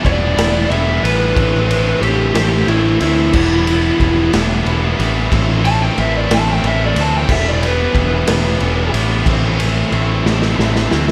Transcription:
Already playing: distorted electric guitar E3 G3 B3 E4
0.03 picked electric bass E1, distorted electric guitar E3 G3 B3 E4, lead electric guitar D5, kick, ride
0.36 picked electric bass E1, distorted electric guitar E3 G3 B3 E4, snare, ride
0.68 picked electric bass E1, distorted electric guitar E3 G3 B3 E4, lead electric guitar E5, ride
1.02 picked electric bass A1, distorted electric guitar G3 B3 E4, lead electric guitar B4, ride
1.34 picked electric bass A1, distorted electric guitar A2 E3 A3 C4 E4, kick, ride
1.68 distorted electric guitar A3 C4 E4, ride
2.00 picked electric bass A1, distorted electric guitar E3 A3 C4 E4, lead electric guitar G4, ride
2.34 picked electric bass A1, distorted electric guitar A2 E3 A3 C4 E4, lead electric guitar G4, snare, ride
2.67 picked electric bass A1, distorted electric guitar E3 A3 C4 E4, lead electric guitar E4, ride
2.99 picked electric bass D2, distorted electric guitar A3 C4 E4, lead electric guitar E4, ride
3.32 picked electric bass E1, distorted electric guitar E3 G3 B3 E4, kick, crash
3.66 distorted electric guitar G3 B3 E4, ride
3.99 picked electric bass E1, distorted electric guitar E3 G3 B3 E4, kick, ride
4.32 picked electric bass E1, distorted electric guitar E3 G3 B3 E4, snare, ride
4.65 picked electric bass E1, distorted electric guitar E3 G3 B3 E4, ride
4.97 picked electric bass A1, distorted electric guitar G3 B3 E4, ride
5.29 picked electric bass A1, distorted electric guitar A2 E3 A3 C4 E4, kick, ride
5.62 distorted electric guitar A3 C4 E4, lead electric guitar A5, ride
5.82 lead electric guitar G5
5.95 picked electric bass A1, distorted electric guitar E3 A3 C4 E4, ride
6.00 lead electric guitar E5
6.17 lead electric guitar D5
6.27 picked electric bass A1, distorted electric guitar A3 C4 E4, ride
6.31 distorted electric guitar A2 E3, lead electric guitar A5, snare
6.52 lead electric guitar G5
6.61 picked electric bass A1, distorted electric guitar E3 A3 C4 E4, ride
6.67 lead electric guitar E5
6.85 lead electric guitar D5
6.94 picked electric bass D2, distorted electric guitar A3 C4 E4, ride
7.01 lead electric guitar A5
7.17 lead electric guitar G5
7.26 picked electric bass E1, distorted electric guitar E3 G3 B3 E4, kick, crash
7.32 lead electric guitar E5
7.48 lead electric guitar D5
7.60 distorted electric guitar G3 B3 E4, ride
7.65 lead electric guitar B4
7.93 picked electric bass E1, distorted electric guitar E3 G3 B3 E4, kick, ride
8.25 picked electric bass E1, distorted electric guitar E3 G3 B3 E4, snare, ride
8.57 picked electric bass E1, distorted electric guitar E3 G3 B3 E4, ride
8.91 picked electric bass A1, distorted electric guitar G3 B3 E4, ride
9.24 picked electric bass A1, distorted electric guitar A2 E3 A3 C4 E4, kick, ride
9.56 distorted electric guitar A3 C4 E4, ride
9.60 distorted electric guitar A3 C4 E4
9.90 picked electric bass A1, distorted electric guitar E3 A3 C4 E4, ride
10.23 picked electric bass A1, distorted electric guitar A3 C4 E4, snare
10.29 distorted electric guitar A2 E3
10.42 snare
10.54 distorted electric guitar E3 A3 C4 E4
10.59 picked electric bass A1, snare
10.76 snare
10.88 distorted electric guitar A3 C4 E4, snare
10.92 picked electric bass D2, distorted electric guitar A3 C4 E4
11.08 snare

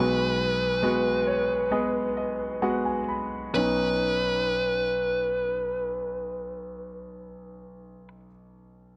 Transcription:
Already playing: grand piano B1 B2 G#3 B3 F#4, lead electric guitar B4
0.83 grand piano G#3 B3 F#4
1.27 grand piano C#5
1.71 grand piano G#3 B3 G#4 D#5
2.17 grand piano D#5
2.62 grand piano G#3 B3 F#4 F#5
2.85 grand piano G#5
3.08 grand piano B5
3.53 grand piano B1 B3 C#4, lead electric guitar B4
3.57 grand piano D#4

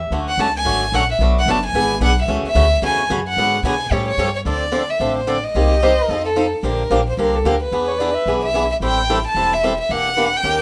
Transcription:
Already playing: soprano saxophone E5
0.10 upright bass D2, steel-string acoustic guitar D3 F#3 A3 C#4 F#4
0.29 violin F#5
0.37 upright bass C#2, steel-string acoustic guitar D3 F#3 A3 C#4 F#4, violin A5
0.56 violin G#5
0.65 upright bass G#1, steel-string acoustic guitar D3 F#3 A3 C#4 F#4
0.92 upright bass A#1, steel-string acoustic guitar D3 F#3 A3 C#4 F#4, violin F#5
1.11 violin E5
1.19 upright bass B1, steel-string acoustic guitar B2 F#3 A3 D4 F#4
1.39 violin F#5
1.46 upright bass F#1, steel-string acoustic guitar B2 F#3 A3 D4 F#4
1.50 violin A5
1.66 violin G#5
1.73 upright bass G#1, steel-string acoustic guitar E3 B3 D4 G#4
2.00 upright bass B1, steel-string acoustic guitar E3 B3 D4 G#4
2.04 violin F#5
2.21 violin E5
2.28 upright bass C#2, steel-string acoustic guitar C#3 E3 A3 C#4 F#4
2.43 muted upright bass stroke
2.48 violin E5
2.55 upright bass D2, steel-string acoustic guitar C#3 E3 A3 C#4 F#4
2.82 upright bass E2, steel-string acoustic guitar C#3 E3 A3 C#4 F#4, violin G#5
3.10 upright bass F#2, steel-string acoustic guitar C#3 E3 A3 C#4 F#4
3.28 violin F#5
3.37 upright bass G#2, steel-string acoustic guitar D3 F#3 B3 F#4 G#4
3.63 upright bass B2, steel-string acoustic guitar D3 F#3 B3 F#4 G#4, violin G#5
3.91 upright bass A2, steel-string acoustic guitar F3 G3 C#4 G4 A4, violin C#5
4.08 violin C#5
4.18 upright bass G2, steel-string acoustic guitar F3 G3 C#4 G4 A4
4.35 violin C#5
4.45 upright bass D2, steel-string acoustic guitar D3 F3 C4 D4 A4, violin D5
4.72 steel-string acoustic guitar D3 F3 C4 D4 A4
4.90 violin E5
5.00 upright bass A1, steel-string acoustic guitar D3 F3 C4 D4 A4
5.17 violin C5
5.27 steel-string acoustic guitar D3 F3 C4 D4 A4, violin D5
5.44 violin D#5
5.55 upright bass C2, steel-string acoustic guitar C3 G3 A#3 D#4 G4
5.71 soprano saxophone G4
5.82 steel-string acoustic guitar C3 G3 A#3 D#4 G4, soprano saxophone C5
6.08 upright bass F2, steel-string acoustic guitar F3 C4 D#4 A4
6.25 violin A4
6.36 steel-string acoustic guitar F3 C4 D#4 A4
6.63 upright bass A#1, steel-string acoustic guitar D3 F3 A#3 D4 G4, violin A#4
6.90 upright bass A#1, steel-string acoustic guitar D3 F3 A#3 D4 G4
7.09 violin C5
7.17 upright bass C2, steel-string acoustic guitar D3 F3 A#3 D4 G4, violin A#4
7.36 violin A4
7.44 upright bass D2, steel-string acoustic guitar D3 F3 A#3 D4 G4, violin A#4
7.63 violin B4
7.71 upright bass E2, steel-string acoustic guitar E3 B3 D4 G#4
7.88 soprano saxophone C#5
7.99 steel-string acoustic guitar E3 B3 D4 G#4, soprano saxophone D5
8.14 soprano saxophone E5
8.26 upright bass B1, steel-string acoustic guitar E3 B3 D4 G#4
8.45 violin E5
8.54 steel-string acoustic guitar E3 B3 D4 G#4
8.72 violin E5
8.80 upright bass A1, steel-string acoustic guitar E3 G3 C4 E4 A4, violin G5
9.09 steel-string acoustic guitar E3 G3 C4 E4 A4
9.27 violin A5
9.34 upright bass E1, steel-string acoustic guitar E3 G3 C4 E4 A4
9.53 violin E5
9.63 steel-string acoustic guitar E3 G3 C4 E4 A4
9.80 violin E5
9.89 upright bass E1, steel-string acoustic guitar E3 A#3 D4 G4, violin F#5
10.17 steel-string acoustic guitar E3 A#3 D4 G4
10.36 violin G5
10.43 upright bass D#2, steel-string acoustic guitar D#3 A#3 C#4 G4 A#4

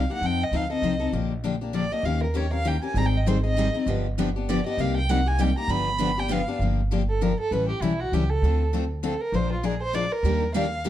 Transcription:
Already playing: violin F5
0.10 steel-string acoustic guitar A#3 D#4 G4, violin F#5
0.21 upright bass F2, steel-string acoustic guitar F3 C4 D#4 A4
0.26 violin G5
0.44 violin D#5
0.51 upright bass D2, steel-string acoustic guitar F3 C4 D#4 A4
0.56 violin F5
0.70 steel-string acoustic guitar C4 D#4 A4, violin D#5
0.82 upright bass C2, steel-string acoustic guitar F3 C4 D#4 A4
1.00 steel-string acoustic guitar C4 D#4 A4
1.12 upright bass A#1, steel-string acoustic guitar D3 F3 A#3 D4 G4
1.44 steel-string acoustic guitar D3 F3 A#3 D4 G4
1.61 steel-string acoustic guitar A#3 D4 G4
1.73 steel-string acoustic guitar D3 F3 A#3 D4 G4, violin D5
1.92 steel-string acoustic guitar A#3 D4 G4, violin D#5
2.03 upright bass D#2, steel-string acoustic guitar D#3 A#3 C#4 G4 A#4, violin F5
2.24 violin A#4
2.34 steel-string acoustic guitar D#3 A#3 C#4 G4 A#4, violin C#5
2.51 steel-string acoustic guitar C#4 G4 A#4, violin F5
2.65 steel-string acoustic guitar D#3 A#3 C#4 G4 A#4, violin G5
2.82 steel-string acoustic guitar C#4 G4 A#4, violin G#5
2.94 upright bass G#1, steel-string acoustic guitar D#3 G3 C4 D#4 G#4, violin A#5
3.06 violin G5
3.17 violin D#5
3.26 steel-string acoustic guitar D#3 G3 C4 D#4 G#4, violin C5
3.43 steel-string acoustic guitar C4 D#4 G#4, violin D#5
3.56 steel-string acoustic guitar D#3 G3 C4 D#4 G#4
3.74 steel-string acoustic guitar C4 D#4 G#4
3.86 upright bass G1, steel-string acoustic guitar D3 F3 B3 D4 G4
4.18 steel-string acoustic guitar D3 F3 B3 D4 G4
4.36 steel-string acoustic guitar B3 D4 G4
4.49 steel-string acoustic guitar D3 F3 B3 D4 G4, violin D5
4.66 steel-string acoustic guitar B3 D4 G4, violin D#5
4.77 upright bass C2, steel-string acoustic guitar C3 G3 A#3 D#4 G4, violin F5
4.97 violin G5
5.10 steel-string acoustic guitar C3 G3 A#3 D#4 G4, violin F#5
5.26 steel-string acoustic guitar A#3 D#4 G4, violin G#5
5.39 steel-string acoustic guitar C3 G3 A#3 D#4 G4, violin G5
5.57 steel-string acoustic guitar A#3 D#4 G4, violin A#5
5.68 upright bass G1, steel-string acoustic guitar D3 F3 B3 D4 G4, violin B5
5.99 steel-string acoustic guitar D3 F3 B3 D4 G4
6.18 steel-string acoustic guitar B3 D4 G4, violin G5
6.30 steel-string acoustic guitar D3 F3 B3 D4 G4, violin F5
6.48 steel-string acoustic guitar B3 D4 G4
6.59 upright bass G1, steel-string acoustic guitar D3 F3 A#3 D4 G4
6.91 steel-string acoustic guitar D3 F3 A#3 D4 G4
7.09 violin A4
7.21 steel-string acoustic guitar D3 F3 A#3 D4 G4, violin A#4
7.40 violin A4
7.51 upright bass A1, steel-string acoustic guitar E3 G3 C#4 E4 A4, violin B4
7.69 violin G4
7.81 upright bass B1, steel-string acoustic guitar E3 G3 C#4 E4 A4, violin E4
8.00 violin F#4
8.12 upright bass C#2, steel-string acoustic guitar E3 G3 C#4 E4 A4, violin G4
8.30 violin A4
8.42 upright bass D2, steel-string acoustic guitar D3 A3 C4 F4 A4
8.73 steel-string acoustic guitar D3 A3 C4 F4 A4
9.03 steel-string acoustic guitar D3 A3 C4 F4 A4, violin A4
9.21 violin A#4
9.32 upright bass A#1, steel-string acoustic guitar F3 G#3 D4 F4 A#4, violin C5
9.53 violin F4
9.63 steel-string acoustic guitar F3 G#3 D4 F4 A#4, violin G#4
9.82 violin C5
9.93 steel-string acoustic guitar F3 G#3 D4 F4 A#4, violin D5
10.12 violin A#4
10.23 upright bass D#2, steel-string acoustic guitar D#3 G3 A#3 D4 G4
10.55 steel-string acoustic guitar D#3 G3 A#3 D4 G4, violin F5
10.85 steel-string acoustic guitar D#3 G3 A#3 D4 G4

